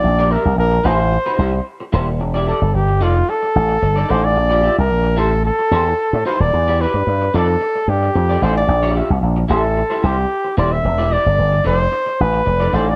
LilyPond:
<<
  \new Staff \with { instrumentName = "Flugelhorn" } { \time 4/4 \key a \minor \tempo 4 = 111 d''8 bes'8 bes'8 c''4. r4 | r8 a'8 g'8 f'8 a'4. c''16 d''16~ | d''8. bes'8. a'8 a'4. c''16 d''16~ | d''8 b'4 a'4 g'4 c''16 d''16~ |
d''8 r4 a'4 g'4 d''16 e''16~ | e''8 d''4 c''4 b'4 c''16 d''16 | }
  \new Staff \with { instrumentName = "Clean electric guitar" } { \time 4/4 \key a \minor r16 <g' bes' d''>16 <g' bes' e''>16 r8. <e' g' c''>16 r8 <e' g' c''>16 <e' g' c''>16 r8. <e' g' c''>16 r16 | r16 <e' g' d''>16 <e' g' d''>16 r8. <ees' a' d''>16 r4. <ees' a' d''>16 <ees' a' d''>16 r16 | r16 <f' g' d''>16 <f' g' e''>16 r8. <e' g' c''>16 r8. <e' g' c''>16 r8. <e' g' c''>16 r16 | r16 <e' g' d''>16 <e' g' d''>16 r8. <ees' a' d''>16 r4. <ees' a' d''>16 <ees' a' d''>16 r16 |
r16 <f' g' d''>16 <f' g' e''>16 r8. <e' g' c''>16 r8 <e' g' c''>16 <e' g' c''>16 r8. <e' g' c''>16 r16 | r16 <e' g' d''>16 <e' g' d''>16 r8. <dis' a' d''>16 r4. <dis' a' d''>16 <dis' a' d''>16 r16 | }
  \new Staff \with { instrumentName = "Slap bass" } { \clef bass \time 4/4 \key a \minor bes,,8. c,16 bes,,8 a,,8. r16 c,8 r8 dis,,8 | e,,8. g,,16 g,,8 f,,8 r8 a,,8 g,,8 a,,8 | bes,,8. c,16 bes,,8 a,,8. r16 e,8 r16 a,16 r16 dis,,16 | e,8. g,16 g,8 f,8 r8 g,8 f,8 a,,8 |
bes,,8. c,16 bes,,8 a,,8. r16 c,8 r8 dis,,8 | e,,8. g,,16 g,,8 f,,8 r8 a,,8 f,,8 a,,8 | }
>>